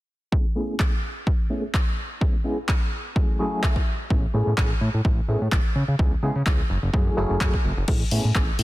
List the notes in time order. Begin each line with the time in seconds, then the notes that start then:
0.32 A3 B3 C#4 E4 G#4, kick
0.55 A3 B3 C#4 E4 G#4
0.79 A3 E4, kick, clap
1.27 kick
1.50 A3 B3 C#4 E4 G#4
1.74 kick, clap
2.21 G#3 B3 C#4 E4 G#4, kick
2.44 G#3 B3 C#4 E4 G#4
2.68 G#3 B3 C#4 E4 G#4, kick, clap
3.15 F#3 A3 C#4 E4 G#4, kick
3.39 F#3 A3 C#4 E4 G#4
3.63 F#3 A3 C#4 E4, kick, clap
3.76 kick
4.10 A1 A3 B3 C#4 E4 G#4, kick
4.34 A2 A3 B3 C#4 E4 G#4, tambourine
4.47 A2, tambourine
4.57 A1 A3 B3 C#4 E4 G#4, kick, clap
4.81 A2
4.94 A2
5.05 A1, kick
5.19 tambourine
5.28 A2 A3 B3 C#4 E4 G#4, tambourine
5.41 A2, tambourine
5.52 A1, kick, clap
5.75 C#3, tambourine
5.88 C#3, tambourine
5.99 C#2 G#3 B3 C#4 E4 G#4, kick
6.12 tambourine
6.22 C#3 G#3 B3 C#4 E4 G#4, tambourine
6.35 C#3, tambourine
6.46 C#2 G#3 B3 C#4 E4 G#4, kick, clap
6.70 F#1, tambourine
6.83 F#1, tambourine
6.93 F#2 F#3 A3 C#4 E4 G#4, kick
7.07 tambourine
7.17 F#1 F#3 A3 C#4 E4 G#4, tambourine
7.29 F#1, tambourine
7.40 F#2 F#3 A3 E4 G#4, kick, clap
7.54 kick, tambourine
7.65 F#1, tambourine
7.77 F#1, tambourine
7.88 A1 A3 B3 C#4 E4 G#4, kick, crash
8.11 A2 A3 B3 C#4 E4 G#4, open hi-hat
8.24 A2
8.35 A1 A3 B3 C#4 E4 G#4, kick, clap
8.59 A2, open hi-hat